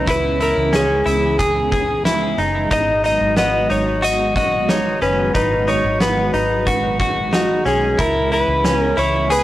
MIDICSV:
0, 0, Header, 1, 6, 480
1, 0, Start_track
1, 0, Key_signature, 5, "minor"
1, 0, Tempo, 659341
1, 55, Time_signature, 4, 2, 24, 8
1, 6868, End_track
2, 0, Start_track
2, 0, Title_t, "Electric slide guitar"
2, 0, Program_c, 0, 29
2, 75, Note_on_c, 0, 71, 76
2, 307, Note_off_c, 0, 71, 0
2, 309, Note_on_c, 0, 70, 77
2, 548, Note_on_c, 0, 68, 73
2, 549, Note_off_c, 0, 70, 0
2, 1473, Note_off_c, 0, 68, 0
2, 1988, Note_on_c, 0, 75, 88
2, 2218, Note_off_c, 0, 75, 0
2, 2226, Note_on_c, 0, 75, 96
2, 2456, Note_off_c, 0, 75, 0
2, 2464, Note_on_c, 0, 75, 87
2, 2703, Note_on_c, 0, 73, 77
2, 2707, Note_off_c, 0, 75, 0
2, 2943, Note_on_c, 0, 75, 82
2, 2946, Note_off_c, 0, 73, 0
2, 3173, Note_off_c, 0, 75, 0
2, 3182, Note_on_c, 0, 75, 80
2, 3419, Note_on_c, 0, 73, 73
2, 3425, Note_off_c, 0, 75, 0
2, 3654, Note_off_c, 0, 73, 0
2, 3656, Note_on_c, 0, 71, 69
2, 3891, Note_off_c, 0, 71, 0
2, 3899, Note_on_c, 0, 71, 79
2, 4140, Note_on_c, 0, 73, 79
2, 4144, Note_off_c, 0, 71, 0
2, 4384, Note_on_c, 0, 71, 63
2, 4385, Note_off_c, 0, 73, 0
2, 5071, Note_off_c, 0, 71, 0
2, 5350, Note_on_c, 0, 66, 75
2, 5586, Note_on_c, 0, 68, 62
2, 5590, Note_off_c, 0, 66, 0
2, 5826, Note_on_c, 0, 70, 81
2, 5827, Note_off_c, 0, 68, 0
2, 6063, Note_off_c, 0, 70, 0
2, 6066, Note_on_c, 0, 71, 90
2, 6408, Note_off_c, 0, 71, 0
2, 6408, Note_on_c, 0, 70, 90
2, 6541, Note_off_c, 0, 70, 0
2, 6544, Note_on_c, 0, 73, 83
2, 6783, Note_on_c, 0, 71, 87
2, 6786, Note_off_c, 0, 73, 0
2, 6868, Note_off_c, 0, 71, 0
2, 6868, End_track
3, 0, Start_track
3, 0, Title_t, "Clean electric guitar"
3, 0, Program_c, 1, 27
3, 55, Note_on_c, 1, 64, 79
3, 286, Note_off_c, 1, 64, 0
3, 295, Note_on_c, 1, 64, 67
3, 530, Note_on_c, 1, 61, 74
3, 535, Note_off_c, 1, 64, 0
3, 769, Note_on_c, 1, 64, 69
3, 772, Note_off_c, 1, 61, 0
3, 1009, Note_off_c, 1, 64, 0
3, 1012, Note_on_c, 1, 68, 65
3, 1243, Note_off_c, 1, 68, 0
3, 1252, Note_on_c, 1, 68, 65
3, 1491, Note_off_c, 1, 68, 0
3, 1494, Note_on_c, 1, 64, 58
3, 1734, Note_off_c, 1, 64, 0
3, 1736, Note_on_c, 1, 63, 59
3, 1964, Note_off_c, 1, 63, 0
3, 1973, Note_on_c, 1, 63, 78
3, 2205, Note_off_c, 1, 63, 0
3, 2213, Note_on_c, 1, 63, 65
3, 2450, Note_off_c, 1, 63, 0
3, 2453, Note_on_c, 1, 59, 68
3, 2689, Note_off_c, 1, 59, 0
3, 2692, Note_on_c, 1, 63, 63
3, 2929, Note_on_c, 1, 66, 74
3, 2934, Note_off_c, 1, 63, 0
3, 3164, Note_off_c, 1, 66, 0
3, 3173, Note_on_c, 1, 66, 65
3, 3414, Note_off_c, 1, 66, 0
3, 3416, Note_on_c, 1, 63, 61
3, 3651, Note_off_c, 1, 63, 0
3, 3654, Note_on_c, 1, 61, 61
3, 3888, Note_off_c, 1, 61, 0
3, 3891, Note_on_c, 1, 63, 73
3, 4124, Note_off_c, 1, 63, 0
3, 4133, Note_on_c, 1, 63, 71
3, 4369, Note_off_c, 1, 63, 0
3, 4372, Note_on_c, 1, 59, 66
3, 4611, Note_off_c, 1, 59, 0
3, 4614, Note_on_c, 1, 63, 70
3, 4854, Note_on_c, 1, 66, 74
3, 4855, Note_off_c, 1, 63, 0
3, 5087, Note_off_c, 1, 66, 0
3, 5096, Note_on_c, 1, 66, 65
3, 5334, Note_on_c, 1, 63, 67
3, 5335, Note_off_c, 1, 66, 0
3, 5569, Note_off_c, 1, 63, 0
3, 5572, Note_on_c, 1, 61, 63
3, 5813, Note_on_c, 1, 64, 82
3, 5814, Note_off_c, 1, 61, 0
3, 6047, Note_off_c, 1, 64, 0
3, 6055, Note_on_c, 1, 64, 68
3, 6295, Note_off_c, 1, 64, 0
3, 6295, Note_on_c, 1, 61, 68
3, 6530, Note_on_c, 1, 64, 64
3, 6535, Note_off_c, 1, 61, 0
3, 6769, Note_off_c, 1, 64, 0
3, 6772, Note_on_c, 1, 68, 78
3, 6868, Note_off_c, 1, 68, 0
3, 6868, End_track
4, 0, Start_track
4, 0, Title_t, "Analog synth pad"
4, 0, Program_c, 2, 89
4, 0, Note_on_c, 2, 49, 67
4, 0, Note_on_c, 2, 52, 58
4, 0, Note_on_c, 2, 56, 59
4, 0, Note_on_c, 2, 59, 58
4, 0, Note_on_c, 2, 61, 74
4, 1944, Note_off_c, 2, 52, 0
4, 1945, Note_off_c, 2, 49, 0
4, 1945, Note_off_c, 2, 61, 0
4, 1973, Note_on_c, 2, 54, 62
4, 1976, Note_on_c, 2, 51, 68
4, 1976, Note_on_c, 2, 66, 68
4, 5785, Note_off_c, 2, 54, 0
4, 5786, Note_off_c, 2, 51, 0
4, 5786, Note_off_c, 2, 59, 0
4, 5786, Note_off_c, 2, 66, 0
4, 5822, Note_on_c, 2, 52, 63
4, 5822, Note_on_c, 2, 59, 63
4, 5822, Note_on_c, 2, 61, 74
4, 5823, Note_on_c, 2, 49, 68
4, 6868, Note_off_c, 2, 49, 0
4, 6868, Note_off_c, 2, 52, 0
4, 6868, Note_off_c, 2, 56, 0
4, 6868, Note_off_c, 2, 59, 0
4, 6868, Note_off_c, 2, 61, 0
4, 6868, End_track
5, 0, Start_track
5, 0, Title_t, "Fingered electric bass"
5, 0, Program_c, 3, 33
5, 54, Note_on_c, 3, 37, 86
5, 396, Note_off_c, 3, 37, 0
5, 419, Note_on_c, 3, 37, 83
5, 759, Note_off_c, 3, 37, 0
5, 773, Note_on_c, 3, 37, 80
5, 1705, Note_off_c, 3, 37, 0
5, 1731, Note_on_c, 3, 30, 74
5, 1961, Note_off_c, 3, 30, 0
5, 1974, Note_on_c, 3, 32, 84
5, 2316, Note_off_c, 3, 32, 0
5, 2337, Note_on_c, 3, 32, 80
5, 2678, Note_off_c, 3, 32, 0
5, 2697, Note_on_c, 3, 32, 73
5, 3627, Note_off_c, 3, 32, 0
5, 3655, Note_on_c, 3, 30, 73
5, 3883, Note_off_c, 3, 30, 0
5, 3894, Note_on_c, 3, 32, 97
5, 4237, Note_off_c, 3, 32, 0
5, 4254, Note_on_c, 3, 32, 80
5, 4597, Note_off_c, 3, 32, 0
5, 4617, Note_on_c, 3, 32, 75
5, 5547, Note_off_c, 3, 32, 0
5, 5573, Note_on_c, 3, 35, 68
5, 5802, Note_off_c, 3, 35, 0
5, 5816, Note_on_c, 3, 37, 82
5, 6157, Note_off_c, 3, 37, 0
5, 6173, Note_on_c, 3, 37, 78
5, 6516, Note_off_c, 3, 37, 0
5, 6534, Note_on_c, 3, 37, 77
5, 6868, Note_off_c, 3, 37, 0
5, 6868, End_track
6, 0, Start_track
6, 0, Title_t, "Drums"
6, 54, Note_on_c, 9, 36, 87
6, 55, Note_on_c, 9, 42, 70
6, 127, Note_off_c, 9, 36, 0
6, 128, Note_off_c, 9, 42, 0
6, 295, Note_on_c, 9, 42, 37
6, 367, Note_off_c, 9, 42, 0
6, 531, Note_on_c, 9, 38, 97
6, 536, Note_on_c, 9, 42, 60
6, 604, Note_off_c, 9, 38, 0
6, 609, Note_off_c, 9, 42, 0
6, 776, Note_on_c, 9, 42, 47
6, 849, Note_off_c, 9, 42, 0
6, 1013, Note_on_c, 9, 42, 60
6, 1014, Note_on_c, 9, 36, 83
6, 1086, Note_off_c, 9, 42, 0
6, 1087, Note_off_c, 9, 36, 0
6, 1254, Note_on_c, 9, 36, 80
6, 1261, Note_on_c, 9, 42, 42
6, 1327, Note_off_c, 9, 36, 0
6, 1333, Note_off_c, 9, 42, 0
6, 1494, Note_on_c, 9, 38, 91
6, 1498, Note_on_c, 9, 42, 52
6, 1567, Note_off_c, 9, 38, 0
6, 1571, Note_off_c, 9, 42, 0
6, 1735, Note_on_c, 9, 42, 36
6, 1808, Note_off_c, 9, 42, 0
6, 1975, Note_on_c, 9, 36, 89
6, 1975, Note_on_c, 9, 42, 70
6, 2047, Note_off_c, 9, 36, 0
6, 2048, Note_off_c, 9, 42, 0
6, 2214, Note_on_c, 9, 42, 38
6, 2287, Note_off_c, 9, 42, 0
6, 2450, Note_on_c, 9, 38, 101
6, 2456, Note_on_c, 9, 42, 61
6, 2523, Note_off_c, 9, 38, 0
6, 2528, Note_off_c, 9, 42, 0
6, 2695, Note_on_c, 9, 42, 40
6, 2768, Note_off_c, 9, 42, 0
6, 2934, Note_on_c, 9, 42, 55
6, 3006, Note_off_c, 9, 42, 0
6, 3173, Note_on_c, 9, 36, 73
6, 3179, Note_on_c, 9, 42, 43
6, 3246, Note_off_c, 9, 36, 0
6, 3252, Note_off_c, 9, 42, 0
6, 3413, Note_on_c, 9, 38, 90
6, 3417, Note_on_c, 9, 42, 53
6, 3486, Note_off_c, 9, 38, 0
6, 3490, Note_off_c, 9, 42, 0
6, 3653, Note_on_c, 9, 42, 37
6, 3726, Note_off_c, 9, 42, 0
6, 3895, Note_on_c, 9, 36, 101
6, 3895, Note_on_c, 9, 42, 65
6, 3967, Note_off_c, 9, 36, 0
6, 3967, Note_off_c, 9, 42, 0
6, 4135, Note_on_c, 9, 42, 37
6, 4208, Note_off_c, 9, 42, 0
6, 4372, Note_on_c, 9, 38, 105
6, 4377, Note_on_c, 9, 42, 58
6, 4445, Note_off_c, 9, 38, 0
6, 4450, Note_off_c, 9, 42, 0
6, 4616, Note_on_c, 9, 42, 44
6, 4688, Note_off_c, 9, 42, 0
6, 4854, Note_on_c, 9, 42, 55
6, 4855, Note_on_c, 9, 36, 76
6, 4927, Note_off_c, 9, 36, 0
6, 4927, Note_off_c, 9, 42, 0
6, 5094, Note_on_c, 9, 36, 78
6, 5100, Note_on_c, 9, 42, 43
6, 5167, Note_off_c, 9, 36, 0
6, 5172, Note_off_c, 9, 42, 0
6, 5334, Note_on_c, 9, 38, 91
6, 5338, Note_on_c, 9, 42, 47
6, 5407, Note_off_c, 9, 38, 0
6, 5410, Note_off_c, 9, 42, 0
6, 5577, Note_on_c, 9, 42, 40
6, 5650, Note_off_c, 9, 42, 0
6, 5816, Note_on_c, 9, 36, 95
6, 5817, Note_on_c, 9, 42, 66
6, 5888, Note_off_c, 9, 36, 0
6, 5890, Note_off_c, 9, 42, 0
6, 6057, Note_on_c, 9, 42, 37
6, 6130, Note_off_c, 9, 42, 0
6, 6293, Note_on_c, 9, 38, 110
6, 6299, Note_on_c, 9, 42, 57
6, 6366, Note_off_c, 9, 38, 0
6, 6372, Note_off_c, 9, 42, 0
6, 6534, Note_on_c, 9, 42, 48
6, 6607, Note_off_c, 9, 42, 0
6, 6773, Note_on_c, 9, 42, 59
6, 6846, Note_off_c, 9, 42, 0
6, 6868, End_track
0, 0, End_of_file